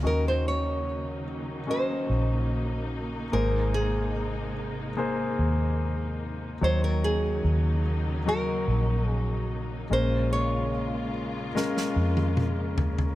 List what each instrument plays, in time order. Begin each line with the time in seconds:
0.03 fingered electric bass D#2, string section C#3 F#3 A#3 D#4, grand piano D#3 C#4 F#4 D#5, nylon-string guitar A#4
0.28 nylon-string guitar C5
0.48 nylon-string guitar C#5
1.67 grand piano C#4 F#4 D#5, nylon-string guitar C5
2.10 fingered electric bass A#1
3.32 fingered electric bass G#1, grand piano G#2 A#3 G#4 C5, string section C3 G#3, nylon-string guitar A#4
3.74 nylon-string guitar G#4
4.97 grand piano A#3 G#4 C5
5.39 fingered electric bass D#2
6.61 fingered electric bass D#2, string section C#3 F#3 A#3 D#4, grand piano D#3 F#3 D#4 C#5, nylon-string guitar C5
6.84 nylon-string guitar A#4
7.04 nylon-string guitar G#4
7.44 fingered electric bass D#2
8.26 grand piano F#3 D#4 F#4, nylon-string guitar A#4
8.68 fingered electric bass A#1
9.10 nylon-string guitar G#4
9.90 fingered electric bass A#1, grand piano A#2 G#3 C#4 A#4, string section C#3 G#3 A#3 F4, nylon-string guitar C5
10.33 nylon-string guitar C#5
11.55 grand piano G#3 C#4 A#4, snare
11.77 snare
11.96 fingered electric bass F2
12.17 high tom
12.37 mid tom
12.78 floor tom
12.98 floor tom